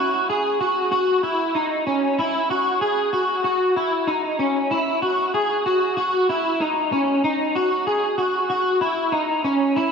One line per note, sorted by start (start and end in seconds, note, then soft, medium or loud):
0.00 0.29 F#4 medium
0.30 0.60 G#4 medium
0.61 0.90 F#4 medium
0.92 1.23 F#4 medium
1.23 1.55 E4 medium
1.55 1.86 D#4 medium
1.87 2.19 C#4 medium
2.19 2.50 E4 medium
2.50 2.81 F#4 medium
2.81 3.12 G#4 medium
3.13 3.43 F#4 medium
3.44 3.76 F#4 medium
3.77 4.08 E4 medium
4.07 4.39 D#4 medium
4.39 4.71 C#4 medium
4.71 5.02 E4 medium
5.02 5.34 F#4 medium
5.34 5.65 G#4 medium
5.66 5.96 F#4 medium
5.97 6.29 F#4 medium
6.29 6.61 E4 medium
6.61 6.92 D#4 medium
6.92 7.24 C#4 medium
7.24 7.56 D#4 medium
7.55 7.86 F#4 medium
7.87 8.17 G#4 medium
8.18 8.49 F#4 medium
8.50 8.81 F#4 medium
8.81 9.13 E4 medium
9.12 9.44 D#4 medium
9.44 9.76 C#4 medium
9.76 9.92 E4 medium